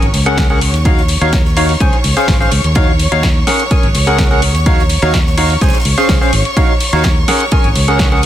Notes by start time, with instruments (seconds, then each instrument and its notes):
Already playing: violin section C#5 C#6
0.02 fingered electric bass G#1, closed hi-hat, ride
0.14 fingered electric bass C#2, open hi-hat, ride
0.26 synth stab C#4 G#4 A#4 F#5, closed hi-hat
0.38 kick, snare, closed hi-hat, ride
0.50 synth stab C#4 G#4 A#4 F#5, ride
0.61 open hi-hat, ride
0.74 fingered electric bass D#2, snare, closed hi-hat
0.85 synth stab D#4 F#4 C#5 F5, kick, closed hi-hat, ride
0.97 snare
1.08 open hi-hat, ride
1.21 fingered electric bass D#2, synth stab D#4 F#4 C#5 F5, closed hi-hat
1.33 kick, snare, closed hi-hat, ride
1.45 snare
1.57 synth stab D#4 F#4 C#5 F5, open hi-hat, ride
1.69 open hi-hat
1.80 fingered electric bass C#2, synth stab C#4 G#4 C5 G#5, kick, closed hi-hat, ride
1.93 closed hi-hat
2.04 fingered electric bass C#2, open hi-hat, ride
2.17 synth stab C#4 G#4 C5 F5, snare, closed hi-hat
2.28 fingered electric bass G#1, kick, snare, open hi-hat, ride
2.40 synth stab C#4 G#4 C5 F5, snare
2.51 fingered electric bass C#2, open hi-hat, ride
2.64 fingered electric bass D#2, closed hi-hat
2.75 synth stab D#4 F#4 C#5 F5, kick, closed hi-hat, ride
2.99 open hi-hat, ride
3.12 fingered electric bass D#2, synth stab D#4 F#4 C#5 F5, closed hi-hat
3.23 kick, snare, closed hi-hat, ride
3.47 synth stab C#4 G#4 A#4 F#5, snare, open hi-hat, ride
3.60 closed hi-hat, ride
3.71 synth stab C#4 G#4 A#4 G#5, kick, closed hi-hat, ride
3.83 fingered electric bass G#1, closed hi-hat, ride
3.95 fingered electric bass C#2, open hi-hat, ride
4.07 synth stab C#4 G#4 A#4 F#5, closed hi-hat
4.18 kick, snare, closed hi-hat, ride
4.31 synth stab C#4 G#4 A#4 F#5, ride
4.42 open hi-hat, ride
4.55 fingered electric bass D#2, snare, closed hi-hat
4.66 synth stab D#4 F#4 C#5 F5, kick, closed hi-hat, ride
4.79 snare
4.89 open hi-hat, ride
5.02 fingered electric bass D#2, synth stab D#4 F#4 C#5 F5, closed hi-hat
5.14 kick, snare, closed hi-hat, ride
5.27 snare
5.38 synth stab D#4 F#4 C#5 F5, open hi-hat, ride
5.50 open hi-hat
5.61 fingered electric bass C#2, synth stab C#4 G#4 C5 G#5, kick, snare, closed hi-hat, ride
5.69 snare, ride
5.73 snare, closed hi-hat, ride
5.80 snare, ride
5.85 fingered electric bass C#2, open hi-hat, ride
5.98 synth stab C#4 G#4 C5 F5, snare, closed hi-hat
6.09 fingered electric bass C#2, kick, snare, open hi-hat, ride
6.21 synth stab C#4 G#4 C5 F5, snare
6.33 fingered electric bass G#1, open hi-hat, ride
6.45 closed hi-hat
6.57 synth stab D#4 F#4 C#5 F5, kick, closed hi-hat, ride
6.80 open hi-hat, ride
6.93 fingered electric bass D#2, synth stab D#4 F#4 C#5 F5, closed hi-hat
7.04 kick, snare, closed hi-hat, ride
7.28 synth stab C#4 G#4 A#4 F#5, snare, open hi-hat, ride
7.40 closed hi-hat, ride
7.51 synth stab C#4 G#4 A#4 G#5, kick, closed hi-hat, ride
7.64 fingered electric bass G#1, closed hi-hat, ride
7.75 fingered electric bass C#2, open hi-hat, ride
7.88 synth stab C#4 G#4 A#4 F#5, closed hi-hat
7.99 kick, snare, closed hi-hat, ride
8.12 synth stab C#4 G#4 A#4 F#5, ride
8.23 ride